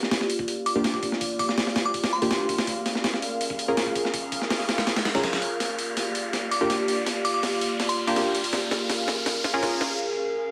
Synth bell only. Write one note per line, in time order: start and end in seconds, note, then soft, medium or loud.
0.66 0.88 D6 medium
1.39 1.45 D6 medium
1.49 1.54 D6 medium
1.85 2.11 D6 medium
2.13 2.49 C6 medium
6.51 6.74 D6 medium
7.25 7.31 D6 medium
7.34 7.40 D6 medium
7.89 8.26 C6 medium